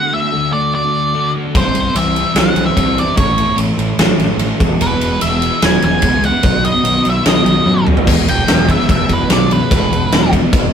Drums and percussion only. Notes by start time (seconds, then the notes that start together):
1.55 kick, ride
1.75 ride
1.95 ride
2.16 ride
2.35 snare, ride
2.56 ride
2.77 kick, ride
2.98 ride
3.17 kick, ride
3.38 ride
3.58 ride
3.79 ride
3.99 snare, ride
4.19 snare, ride
4.39 ride
4.60 kick, ride
4.81 ride
5.01 ride
5.21 ride
5.42 ride
5.62 snare, ride
5.82 ride
6.02 kick, ride
6.23 ride
6.43 kick, ride
6.65 ride
6.85 ride
7.05 ride
7.25 snare, ride
7.46 ride
7.67 high tom
7.87 mid tom
7.97 floor tom
8.07 kick, crash
8.28 ride
8.48 snare, ride
8.69 kick, ride
8.80 snare
8.89 kick, ride
9.09 kick, ride
9.30 snare, ride
9.51 ride
9.71 kick, ride
9.93 ride
10.12 snare, ride
10.33 kick, ride
10.53 kick, ride